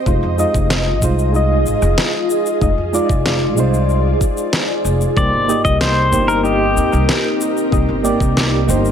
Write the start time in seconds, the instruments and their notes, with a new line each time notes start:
Already playing: ambient pad D#5
0.06 upright bass F1, synth keys G#3 D#4 F4 C5, ambient pad F4 G#4, kick, cabasa
0.23 upright bass F2
0.38 synth keys G#3 D#4 F4 D#5, cabasa
0.54 upright bass F1, kick, cabasa
0.70 snare, cabasa
1.02 upright bass C2, synth keys G#3 D#4 F4 C5, kick, cabasa
1.19 cabasa
1.32 synth keys G#3 D#4 F4 D#5, cabasa
1.66 upright bass G#1, cabasa
1.82 upright bass F1, cabasa
1.98 snare, cabasa
2.30 cabasa
2.46 cabasa
2.61 upright bass F1, synth keys G#3 D#4 F4 D#5, ambient pad D5, kick, cabasa
2.78 upright bass F2
2.93 synth keys G#3 D#4 F4 D5, cabasa
3.09 upright bass F1, kick, cabasa
3.26 snare, cabasa
3.56 upright bass C2, synth keys G#3 D#4 F4 C5, cabasa
3.74 cabasa
3.89 cabasa
4.21 kick, cabasa
4.37 cabasa
4.53 snare, cabasa
4.84 upright bass F1, cabasa
5.01 cabasa
5.17 upright bass C2, synth keys A#3 D#4 G4 C5, ambient pad C4 D#4 G4 A#4, pedal steel guitar D5, kick, cabasa
5.33 upright bass G1
5.48 synth keys A#3 D#4 G4 D#5, cabasa
5.65 upright bass C2, pedal steel guitar D#5, kick, cabasa
5.81 pedal steel guitar C5, snare, cabasa
6.11 upright bass G1, synth keys A#3 D#4 G4 C5, kick, cabasa
6.28 pedal steel guitar A#4, cabasa
6.42 synth keys A#3 D#4 G4 D#5, pedal steel guitar G4, cabasa
6.77 upright bass D#2, cabasa
6.93 upright bass C2, cabasa
7.09 snare, cabasa
7.41 cabasa
7.57 cabasa
7.71 upright bass C2, synth keys A#3 D#4 G4 D#5, kick, cabasa
7.88 upright bass G1
8.03 synth keys A#3 D#4 G4 D5, cabasa
8.20 upright bass C2, kick, cabasa
8.37 snare, cabasa
8.66 upright bass G1, synth keys A#3 D#4 G4 C5, cabasa
8.85 cabasa